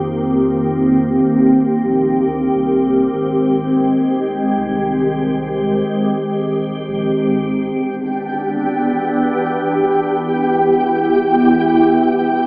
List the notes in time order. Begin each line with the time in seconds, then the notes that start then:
Already playing: F2 D#3 A#3 C4 G4
1.85 A#1
2.27 D2
2.55 C2
3.13 G#1 G#3
4.16 D#1
4.57 C2
6.47 D#1
6.88 A#1
7.33 G#1
7.75 E1 E3 B3 D4 G4 G5
10.05 E4
12.36 D#1 D#3 A#3 C4 G4